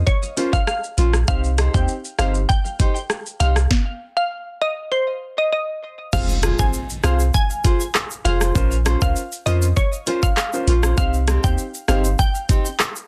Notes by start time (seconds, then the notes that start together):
0.07 C#5, kick, shaker
0.23 muted nylon-string guitar stroke, shaker
0.37 C#4 F4 A#4 C5, closed hi-hat, shaker
0.53 F5, kick, shaker
0.67 F5, cross-stick, shaker
0.84 shaker
0.97 A#1 C#4 F4 C5, closed hi-hat, shaker
1.13 cross-stick, shaker
1.28 C2 C4 D#4 G4 C5 F5, kick, shaker
1.44 shaker
1.58 D#4 G4 C5, cross-stick, closed hi-hat, shaker
1.74 D#2 C4 D#4 G4 C5 G5, kick, shaker
1.88 shaker
2.05 shaker
2.18 G1 C4 D#4 G4 C5 F5, cross-stick, closed hi-hat, shaker
2.35 muted nylon-string guitar stroke, shaker
2.49 G5, kick, shaker
2.65 muted nylon-string guitar stroke, shaker
2.79 D#4 G4 C5, kick, closed hi-hat, shaker
2.96 shaker
3.10 cross-stick, shaker
3.26 shaker
3.40 C2 D#4 G4 C5 F5, closed hi-hat, shaker
3.56 cross-stick, shaker
3.71 kick, snare
4.17 F5
4.62 D#5
4.92 C5
5.38 D#5
5.53 D#5
6.13 F1 C4 F4 G#4 C5 F5, kick, crash, impact, shaker
6.29 shaker
6.43 F4 G#4 C5, cross-stick, closed hi-hat, shaker
6.59 G#1 C4 F4 G#4 C5 G#5, kick, shaker
6.73 shaker
6.89 shaker
7.03 C2 C4 F4 G#4 C5 F5, cross-stick, closed hi-hat, shaker
7.20 shaker
7.34 G#5, kick, shaker
7.50 shaker
7.64 F4 G#4 C5, kick, closed hi-hat, shaker
7.80 shaker
7.95 cross-stick, clap, shaker
8.10 shaker
8.24 F1 F4 G#4 C5 F5, closed hi-hat, shaker
8.41 F4 G#4 C5, cross-stick, shaker
8.55 A#1 C#4 F4 A#4 C5, kick, shaker
8.71 shaker
8.85 C#4 F4 C5, cross-stick, closed hi-hat, shaker
9.01 C#2 C#4 F4 A#4 C5 F5, kick, shaker
9.16 shaker
9.32 shaker
9.46 F2 C#4 F4 A#4 C5 D#5, closed hi-hat, shaker
9.62 shaker
9.76 C#5, kick, shaker
9.93 shaker
10.06 C#4 F4 A#4 C5, closed hi-hat, shaker
10.23 F5, kick, shaker
10.37 F5, cross-stick, clap, shaker
10.53 C#4 F4 A#4 C5, shaker
10.67 A#1 C#4 F4 C5, closed hi-hat, shaker
10.83 C#4 F4 C5, cross-stick, shaker
10.97 C2 C4 D#4 G4 C5 F5, kick, shaker
11.14 shaker
11.27 C4 D#4 G4, cross-stick, closed hi-hat, shaker
11.44 D#2 C4 D#4 G4 C5 G5, kick, shaker
11.58 shaker
11.74 shaker
11.88 G1 C4 D#4 G4 C5 F5, cross-stick, closed hi-hat, shaker
12.04 shaker
12.19 G5, kick, shaker
12.35 shaker
12.49 C4 D#4 G4, kick, closed hi-hat, shaker
12.65 shaker
12.80 cross-stick, clap, shaker
12.96 shaker